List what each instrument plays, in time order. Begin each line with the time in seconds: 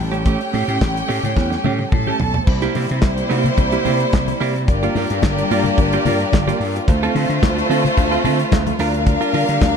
Already playing: string section G3, violin section G4 G5
0.00 slap bass A1, string section A3 C#4
0.12 clean electric guitar A3 C#4 G4, closed hi-hat
0.26 clean electric guitar A3 C#4 G4, kick, closed hi-hat, muted conga
0.40 muted clean electric guitar stroke, closed hi-hat
0.53 slap bass A2, clean electric guitar A3 C#4 G4, open hi-hat, muted conga
0.67 slap bass A2, clean electric guitar A3 C#4 G4, closed hi-hat
0.81 slap bass A1, kick, snare, clap, closed hi-hat, high conga
0.95 muted clean electric guitar stroke, closed hi-hat
1.08 slap bass A2, clean electric guitar A3 C#4 G4, open hi-hat
1.23 slap bass A2, muted clean electric guitar stroke, closed hi-hat, low conga
1.35 slap bass E2, muted clean electric guitar stroke, kick, snare, muted conga
1.51 muted clean electric guitar stroke, snare
1.64 slap bass A2, clean electric guitar A3 C#4 G4, low conga
1.79 muted clean electric guitar stroke, high tom
1.92 slap bass A2, violin section A4 A5, muted clean electric guitar stroke, kick, mid tom, high conga
2.07 clean electric guitar A3 C#4 G4, high conga
2.20 slap bass B1, floor tom
2.34 muted clean electric guitar stroke, floor tom
2.46 slap bass C2, string section C3 G3 A#3 E4, violin section G3 E4 C5, muted clean electric guitar stroke, kick, crash
2.62 clean electric guitar A#3 E4 G4, closed hi-hat
2.75 slap bass C3, clean electric guitar A#3 E4 G4, open hi-hat, muted conga
2.89 slap bass C3, closed hi-hat
3.02 slap bass C2, muted clean electric guitar stroke, kick, snare, clap, closed hi-hat, high conga
3.17 muted clean electric guitar stroke, closed hi-hat
3.29 slap bass C3, clean electric guitar A#3 E4 G4, open hi-hat
3.44 muted clean electric guitar stroke, closed hi-hat, low conga
3.58 slap bass C2, muted clean electric guitar stroke, kick, closed hi-hat, muted conga
3.72 clean electric guitar A#3 E4 G4, closed hi-hat
3.85 slap bass C3, clean electric guitar A#3 E4 G4, open hi-hat, low conga
4.00 muted clean electric guitar stroke, closed hi-hat
4.13 slap bass C2, kick, snare, clap, closed hi-hat, high conga
4.28 muted clean electric guitar stroke, closed hi-hat, high conga
4.40 slap bass C3, clean electric guitar A#3 E4 G4, open hi-hat
4.55 muted clean electric guitar stroke, closed hi-hat
4.67 slap bass G1, string section G3 D4 F4 A#4, violin section A#3 G4 D5, muted clean electric guitar stroke, kick, closed hi-hat, muted conga
4.83 clean electric guitar A#3 F4 G4, closed hi-hat
4.95 slap bass G2, clean electric guitar A#3 F4 G4, open hi-hat, muted conga
5.10 slap bass G2, muted clean electric guitar stroke, closed hi-hat
5.22 slap bass G1, muted clean electric guitar stroke, kick, snare, clap, closed hi-hat, high conga
5.38 muted clean electric guitar stroke, closed hi-hat
5.51 slap bass G2, clean electric guitar A#3 F4 G4, open hi-hat
5.64 muted clean electric guitar stroke, closed hi-hat, low conga
5.78 slap bass G1, muted clean electric guitar stroke, kick, closed hi-hat, muted conga
5.93 clean electric guitar A#3 F4 G4, closed hi-hat
6.05 slap bass G2, clean electric guitar A#3 F4 G4, open hi-hat, low conga
6.20 muted clean electric guitar stroke, closed hi-hat
6.32 slap bass G1, muted clean electric guitar stroke, kick, snare, clap, closed hi-hat, high conga
6.47 clean electric guitar A#3 F4 G4, closed hi-hat, high conga
6.60 slap bass G2, open hi-hat
6.76 muted clean electric guitar stroke, closed hi-hat
6.87 slap bass D2, string section D3 A3 C4, violin section A3 F4 C5, muted clean electric guitar stroke, kick, closed hi-hat, muted conga
7.03 clean electric guitar C4 F4 A4, closed hi-hat
7.15 slap bass D3, clean electric guitar C4 F4 A4, open hi-hat, muted conga
7.29 slap bass D3, closed hi-hat
7.42 slap bass D2, muted clean electric guitar stroke, kick, snare, clap, closed hi-hat, high conga
7.57 muted clean electric guitar stroke, closed hi-hat
7.69 slap bass D3, clean electric guitar C4 F4 A4, open hi-hat
7.85 closed hi-hat, low conga
7.97 slap bass D2, muted clean electric guitar stroke, kick, closed hi-hat, muted conga
8.11 clean electric guitar C4 F4 A4, closed hi-hat
8.24 slap bass D3, clean electric guitar C4 F4 A4, open hi-hat, low conga
8.39 muted clean electric guitar stroke, closed hi-hat
8.52 slap bass D2, kick, snare, clap, closed hi-hat, high conga
8.67 muted clean electric guitar stroke, closed hi-hat, high conga
8.79 slap bass D2, string section G3 A#3, clean electric guitar D4 F4 A#4, violin section D4 A#4 F5, snare, open hi-hat
8.94 muted clean electric guitar stroke, closed hi-hat
9.06 muted clean electric guitar stroke, kick, closed hi-hat, muted conga
9.21 clean electric guitar D4 F4 A#4, closed hi-hat
9.33 slap bass D3, clean electric guitar D4 F4 A#4, open hi-hat, muted conga
9.49 slap bass D3, closed hi-hat
9.61 slap bass D2, muted clean electric guitar stroke, kick, snare, clap, closed hi-hat, high conga